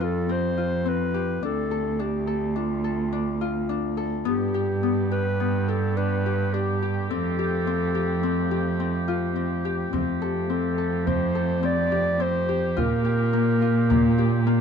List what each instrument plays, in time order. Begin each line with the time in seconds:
Already playing: cello F2, harp C4 G4 A4
0.00 harp F4, clarinet A4
0.29 harp C4, clarinet C5
0.57 harp F4
0.86 harp C4, clarinet B4
1.14 harp G4
1.43 cello D2, harp D4, clarinet A4
1.71 harp A4
1.99 harp D4, clarinet G4
2.27 harp A4
2.56 harp D4, clarinet F4
2.84 harp A4
3.13 harp D4
3.41 harp F4
3.69 harp D4
3.97 harp A4
4.25 cello G2, woodwind section D3 B3 G4, harp B3, clarinet G4
4.54 harp G4
4.83 harp B3
5.11 harp G4, clarinet B4
5.40 harp B3
5.68 harp G4, clarinet A4
5.97 harp D4, clarinet B4
6.26 harp G4
6.54 harp D4, clarinet G4
6.82 harp G4
7.09 cello F2, woodwind section F3 A3, harp C4, clarinet A4
7.39 harp G4
7.67 harp C4
7.95 harp G4
8.23 harp C4
8.51 harp G4
8.80 harp C4
9.08 harp F4
9.36 harp C4
9.65 harp G4
9.93 cello F2, woodwind section F3 A3 G4, harp C4, frame drum
10.22 clarinet G4, harp A4
10.50 harp C4, clarinet A4
10.78 harp A4
11.07 harp C4, clarinet C5, frame drum
11.35 harp A4
11.63 harp C4, clarinet D5
11.92 harp G4, frame drum
12.20 harp C4, clarinet C5
12.49 harp G4, frame drum
12.77 cello A#2, woodwind section C#3 A#3, harp F4, clarinet A#4, frame drum
13.05 harp G4
13.33 harp A#3
13.62 harp F4
13.90 harp A#3, frame drum
14.18 harp G4
14.47 harp A#3